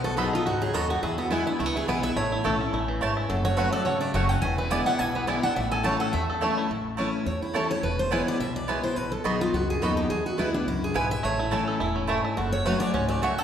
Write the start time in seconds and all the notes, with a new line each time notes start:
Already playing: B1 B2 B3
0.04 F#4 A4
0.17 F#3 B3 D#4 F#4 G#4 A4 D#5 B5
0.33 D#4 F4
0.46 C#2 G#2 F#4
0.62 F#3 G#4
0.74 D#2 F#2 B3 D#4 F#4 A4 D#5 B5
0.90 F#4 G4
1.02 E2 E4 G#4
1.18 B3 F#4
1.31 E3 G#3 B3 E4 B4 G#5
1.47 B3 D4 E4
1.59 C#2 B2 A3 E4
1.66 B3
1.76 E4 G#4
1.87 B1 E3 G#3 B3 E4 B4 G#5
2.03 E4 E5
2.16 A1 A2 A3 C#5
2.32 E4
2.44 B1 E3 A3 C#4 E4 A4 C#5 A5
2.61 C#4 E4
2.73 A1 A2 E4
2.88 E3
3.01 G#1 G#2 A3 C#4 E4 C#5 A5
3.17 E4
3.29 F#1 F#2 F#3 A4
3.45 F#4 C#5
3.57 F#3 A3 C#4 F#4 B4 C#5 F#5
3.72 C#4 F#4 A4 D5
3.85 G#1 C#3 F#4 C#5
4.01 A3 D5
4.14 F#1 F#3 A3 C#4 F#4 C#5 E5 F#5
4.29 C#4 F#5
4.42 E1 E2 E3 G#5
4.58 E4 B4
4.70 D3 G#3 B3 E4 D5 G#5
4.86 B3 E4 F#5
4.99 B1 B2 E4 G#5
5.15 B3 B4
5.27 D3 G#3 B3 E4 D5 G#5
5.43 B3 D4 E4 F#5
5.56 A1 A2 E4 E5
5.71 A4 G#5
5.83 E3 A3 C#4 E4 C#5 A5
6.00 A4 F#5
6.13 E2 A3 E5
6.30 A4
6.41 E3 A3 C#4 E4 C#5 A5
6.58 E4
6.70 A1 A2
6.97 E3 A3 C#4 E4 C#5 A5
7.26 E2 C#5
7.42 E4
7.54 E3 A3 C#4 E4 A4 C#5 A5
7.71 C#5
7.82 E1 E2 B4
7.99 C5
8.11 E3 G#3 B3 E4 B4 C#5 G#5
8.28 D5
8.40 B1 B2 E5
8.56 D5
8.68 E3 G#3 B3 E4 B4 C#5 G#5
8.84 B3 E4 C5
8.96 B1 B2 B4
9.12 A4
9.24 B1 F#3 B3 D#4 F#4 G#4 D#5 B5
9.41 F4
9.53 C#2 F#2 F#4
9.70 G#4
9.81 D#2 F#3 B3 D#4 F#4 A4 D#5 B5
9.97 G4
10.10 E2 G#4
10.26 F#4
10.38 D2 E3 G#3 B3 E4 B4 G#5
10.54 B3 D4 E4
10.66 C#2 F#2 E4
10.84 G#4
10.94 B1 G#2 B3 E4 B4 G#5
11.11 E5
11.23 A1 A2 A3 C#5
11.39 E4
11.51 E3 A3 C#4 E4 C#5 A5
11.68 A4
11.80 E1 A2 E4
11.96 C#4
12.07 G#2 A3 E4 C#5 A5
12.25 E4
12.37 F#1 F#2 F#4 A4
12.52 C#5
12.65 F#3 A3 C#4 F#4 B4 C#5 F#5
12.80 F#4 D5
12.94 C#2 G#2 C#4 C#5
13.08 A3 D5
13.22 F#2 A3 F#4 C#5 E5 F#5
13.38 A4 F#5